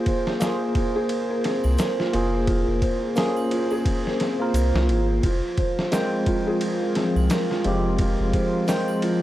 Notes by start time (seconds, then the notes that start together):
Already playing: A#3 F4 G#4 C5
0.06 C5, kick, ride
0.27 snare
0.40 A#3 F4 G#4 A#4, snare, ride, shaker
0.75 F4, kick, ride
0.96 G#4
1.09 ride
1.30 A#4
1.44 C4, snare, ride
1.64 C2, triangle
1.78 A#4, snare, ride, shaker
1.99 F4, snare
2.13 F1 A#3 F4 G#4, ride
2.47 F4, kick, ride
2.67 F1
2.82 C5, kick, ride
3.16 A#3 C#4 F4 G#4 A#4, snare, open hi-hat, shaker
3.37 triangle
3.51 F4, ride
3.71 G#4, triangle
3.86 kick, ride
4.07 A#4, snare
4.20 C4, snare, ride
4.39 A#3 F4 A#4
4.53 C2 A#4, ride, shaker
4.74 C2 F4, snare
4.89 G#1 F4, ride
5.23 F1 F3 F4, kick, ride
5.57 C5, kick, ride
5.79 snare
5.92 G#3 C4 F4 A#4 G5, snare, ride, shaker
6.26 F4, kick, ride
6.47 G#4
6.61 ride
6.82 A#4
6.95 C4, snare, ride
7.16 C2, triangle
7.30 A#4, snare, ride, shaker
7.50 F4, snare
7.64 F1 G#3 C4 F4 G4, ride
7.99 F4, kick, ride
8.20 F1
8.33 C5, kick, ride
8.68 G#3 C4 F4 A#4 G5, snare, open hi-hat, shaker
8.88 triangle
9.02 F4, ride